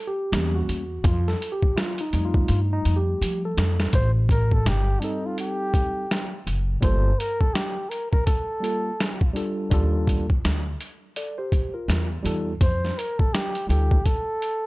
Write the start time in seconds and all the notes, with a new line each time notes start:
0.07 G4
0.32 E2 G3 A#3 C#4, snare, closed hi-hat
0.55 F#4
0.69 E2, closed hi-hat
1.04 F2 F4, kick, closed hi-hat
1.28 A4, snare
1.42 closed hi-hat
1.52 G4
1.62 kick
1.76 F4, snare, closed hi-hat
1.98 D#4, closed hi-hat
2.13 F2 G3 A3 D#4, closed hi-hat
2.25 F4
2.34 kick
2.48 G2 F4, closed hi-hat
2.73 D#4
2.85 F2, closed hi-hat
2.96 G4
3.21 F3, closed hi-hat
3.45 A4
3.57 F2, snare, closed hi-hat
3.80 snare
3.93 A1 C5, kick, closed hi-hat
4.29 A#4, kick, closed hi-hat
4.51 A4, kick
4.66 G1 G4, snare, closed hi-hat
5.00 G3 C4 D4 D#4, closed hi-hat
5.04 D#4 A4
5.26 F4
5.38 G4, closed hi-hat
5.74 kick, closed hi-hat
6.11 snare, closed hi-hat
6.47 F#1, closed hi-hat
6.80 G1 G3 A#3 F4 A4 C5, kick, closed hi-hat
7.19 A#4, closed hi-hat
7.40 A4, kick
7.54 G4, snare, closed hi-hat
7.89 A#4, closed hi-hat
8.11 A#4, kick
8.26 A4, kick, closed hi-hat
8.60 G3 A#3 F4, closed hi-hat
8.64 A4
9.00 snare, closed hi-hat
9.21 kick
9.33 G3 D4 F4 A4, closed hi-hat
9.70 D#2 G3 D4 F4 A4, kick, closed hi-hat
10.07 kick, closed hi-hat
10.30 kick
10.45 D2, snare, closed hi-hat
10.81 closed hi-hat
11.16 A4 D5, closed hi-hat
11.38 G4 C5
11.52 kick, closed hi-hat
11.74 F4 A#4
11.88 E2, snare, closed hi-hat
12.23 E2 G3 D#4 F4 A4, closed hi-hat
12.61 F2 C5, kick, closed hi-hat
12.85 snare
12.98 A#4, closed hi-hat
13.19 A4, kick
13.33 G4, snare, closed hi-hat
13.55 closed hi-hat
13.67 D2 G3 D#4 F4 G4 A4, closed hi-hat
13.91 kick
14.05 A4, kick, closed hi-hat
14.42 closed hi-hat